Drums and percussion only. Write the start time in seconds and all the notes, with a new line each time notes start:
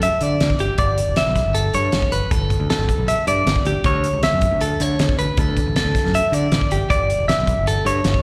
0.02 closed hi-hat
0.21 closed hi-hat
0.40 snare, closed hi-hat
0.50 kick
0.59 closed hi-hat
0.78 kick, closed hi-hat
0.98 closed hi-hat
1.16 snare, closed hi-hat
1.36 kick, snare, closed hi-hat
1.55 closed hi-hat
1.74 closed hi-hat
1.92 snare, closed hi-hat
2.02 kick
2.12 closed hi-hat
2.31 kick, closed hi-hat
2.50 kick, closed hi-hat
2.70 snare, closed hi-hat
2.89 kick, closed hi-hat
3.08 closed hi-hat
3.27 closed hi-hat
3.47 snare, closed hi-hat
3.56 kick
3.65 closed hi-hat
3.84 kick, closed hi-hat
4.04 closed hi-hat
4.23 snare, closed hi-hat
4.41 kick, closed hi-hat
4.61 closed hi-hat
4.80 closed hi-hat
4.99 snare, closed hi-hat
5.09 kick
5.19 closed hi-hat
5.37 kick, closed hi-hat
5.57 kick, closed hi-hat
5.76 snare, closed hi-hat
5.95 kick, snare, closed hi-hat
6.06 snare
6.14 closed hi-hat
6.33 closed hi-hat
6.52 snare, closed hi-hat
6.61 kick
6.71 closed hi-hat
6.90 kick, closed hi-hat
7.10 closed hi-hat
7.29 snare, closed hi-hat
7.47 kick, closed hi-hat
7.67 closed hi-hat
7.86 closed hi-hat
8.04 snare, closed hi-hat
8.14 kick